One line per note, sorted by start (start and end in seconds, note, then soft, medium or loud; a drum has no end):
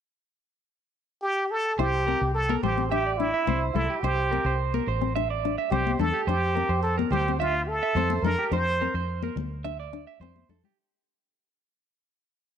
1.22 1.52 G4 loud
1.50 1.80 A4 loud
1.78 2.13 C2 medium
1.78 2.01 E4 medium
1.78 2.34 G4 loud
1.78 2.06 C5 medium
2.07 2.29 C4 medium
2.07 2.20 A#4 medium
2.21 2.55 C2 medium
2.34 2.61 A4 medium
2.49 2.63 A#4 medium
2.49 high conga medium
2.63 3.31 A1 medium
2.63 2.88 G4 medium
2.63 2.90 C5 medium
2.63 low conga medium
2.77 2.88 C4 medium
2.89 3.13 D4 medium
2.89 3.19 G4 medium
2.89 3.05 E5 medium
3.06 3.32 D5 medium
3.18 3.41 D4 medium
3.18 3.73 E4 medium
3.34 3.47 E5 medium
3.47 3.70 C2 medium
3.47 3.68 C4 medium
3.47 3.74 C5 medium
3.47 low conga medium
3.73 3.86 C2 medium
3.73 4.02 E4 medium
3.73 3.89 A4 medium
3.73 low conga medium
3.90 4.03 G4 medium
4.01 4.37 C2 medium
4.01 4.58 G4 medium
4.01 4.30 C5 medium
4.01 muted nylon-string guitar stroke medium
4.31 4.53 C4 medium
4.31 4.45 A#4 medium
4.44 4.79 C2 medium
4.44 4.72 C5 medium
4.74 4.87 A#4 medium
4.74 high conga medium
4.87 5.55 A1 medium
4.87 5.14 C5 medium
5.01 5.12 C4 medium
5.15 5.37 D4 medium
5.15 5.29 E5 medium
5.30 5.56 D5 medium
5.45 5.66 D4 medium
5.58 5.71 E5 medium
5.70 5.94 C2 medium
5.70 5.93 C4 medium
5.70 5.97 G4 medium
5.70 5.98 C5 medium
5.70 low conga medium
5.87 high conga medium
5.99 6.11 E2 medium
5.99 6.21 D4 medium
5.99 6.29 A4 medium
5.99 6.13 A4 medium
5.99 low conga medium
6.14 6.27 G4 medium
6.27 6.61 F2 medium
6.27 6.49 D4 medium
6.27 6.82 G4 medium
6.27 6.54 C5 medium
6.55 6.77 C4 medium
6.55 6.69 A#4 medium
6.69 7.03 F2 medium
6.69 6.96 C5 medium
6.83 6.95 A4 medium
6.98 7.11 A#4 medium
6.98 high conga medium
7.11 7.79 D2 medium
7.11 7.37 G4 medium
7.11 7.38 C5 medium
7.11 low conga medium
7.28 7.38 C4 medium
7.39 7.62 D4 medium
7.39 7.69 F4 medium
7.39 7.53 E5 medium
7.68 8.24 A4 medium
7.83 7.95 E5 medium
7.95 8.18 F2 medium
7.95 8.18 C4 medium
7.95 8.23 C5 medium
7.95 low conga medium
8.10 high conga medium
8.22 8.34 F2 medium
8.22 8.46 D4 medium
8.22 8.38 A4 medium
8.22 8.51 A#4 loud
8.22 low conga medium
8.38 8.51 G4 medium
8.51 8.86 F2 medium
8.51 8.73 D4 medium
8.51 9.04 C5 medium
8.51 8.79 C5 medium
8.81 9.02 C4 medium
8.81 8.94 A#4 medium
8.94 9.28 F2 medium
8.94 9.21 C5 medium
9.23 9.36 A#4 medium
9.23 high conga medium
9.36 10.05 D2 medium
9.36 high conga medium
9.36 low conga medium
9.64 9.86 D4 medium
9.64 9.78 E5 medium
9.80 10.06 D5 medium
9.93 10.14 D4 medium
10.07 10.20 E5 medium
10.20 10.43 F2 medium
10.20 10.43 C4 medium
10.20 10.47 C5 medium
10.20 low conga medium
10.36 high conga soft
10.49 10.60 F2 medium
10.49 10.71 D4 medium
10.49 10.63 A4 medium
10.49 low conga medium
10.64 10.77 G4 medium
10.64 low conga medium